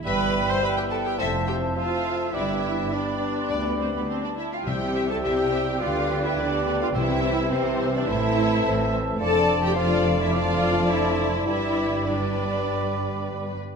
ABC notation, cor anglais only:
X:1
M:4/4
L:1/8
Q:1/4=105
K:Gmix
V:1 name="Cor anglais"
e2 e2 e2 e2 | d2 d4- d z | e4 d4 | e8 |
d2 d2 d4 | d2 d4- d z |]